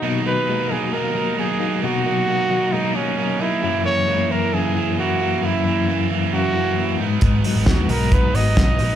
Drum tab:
HH |--------|--------|--------|--------|
SD |--------|--------|--------|--------|
BD |--------|--------|--------|--------|

HH |xoxoxoxo|
SD |--o---o-|
BD |o-o-o-o-|